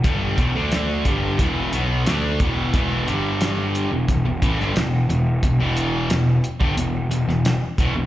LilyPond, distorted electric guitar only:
\new Staff \with { instrumentName = "Distorted electric guitar" } { \clef bass \time 4/4 \key e \minor \tempo 4 = 89 <g, d g>8 <e, b,>16 <d a d'>8. <g, d g>8 <e, b, e>8 <b, fis b>8 <d a d'>8 <e, b, e>8 | <e, b, e>8 <g, d g>4~ <g, d g>16 <e, b,>16 <e, b,>16 <e, b,>16 <a, e>16 <g, d>16 <e, b,>8 <e, b,>8 | <e, b,>16 <e, b, e>8. <e, b,>8 r16 <g, d>16 <e, b,>8 <e, b,>16 <e, b,>8 r16 <e, b,>16 <e, b,>16 | }